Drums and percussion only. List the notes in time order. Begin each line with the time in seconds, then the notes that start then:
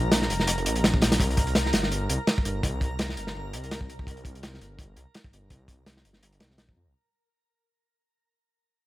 0.12 snare, closed hi-hat
0.22 snare
0.30 closed hi-hat
0.40 snare
0.47 closed hi-hat
0.58 closed hi-hat
0.66 closed hi-hat
0.75 closed hi-hat
0.84 snare, closed hi-hat
0.94 kick
1.02 snare, closed hi-hat
1.12 snare, closed hi-hat
1.20 kick, closed hi-hat
1.30 closed hi-hat
1.37 kick, closed hi-hat
1.47 closed hi-hat
1.55 snare, closed hi-hat
1.66 snare
1.73 snare, closed hi-hat
1.83 snare
1.92 closed hi-hat
2.09 closed hi-hat
2.27 snare, closed hi-hat
2.38 kick
2.45 closed hi-hat
2.63 kick, closed hi-hat
2.81 kick, closed hi-hat
2.99 snare, closed hi-hat
3.09 snare
3.17 closed hi-hat
3.27 snare
3.53 closed hi-hat
3.64 closed hi-hat
3.71 snare, closed hi-hat
3.81 kick
3.90 closed hi-hat
3.99 kick
4.07 kick, closed hi-hat
4.17 closed hi-hat
4.25 kick, closed hi-hat
4.35 closed hi-hat
4.43 snare, closed hi-hat
4.54 snare
4.61 closed hi-hat
4.79 kick, closed hi-hat
4.96 closed hi-hat
5.14 snare, closed hi-hat
5.24 kick
5.33 closed hi-hat
5.50 kick, closed hi-hat
5.68 kick, closed hi-hat
5.86 snare, closed hi-hat
5.97 snare
6.05 closed hi-hat
6.13 snare
6.23 closed hi-hat
6.32 closed hi-hat
6.40 snare, closed hi-hat
6.51 snare
6.58 snare, closed hi-hat
6.69 kick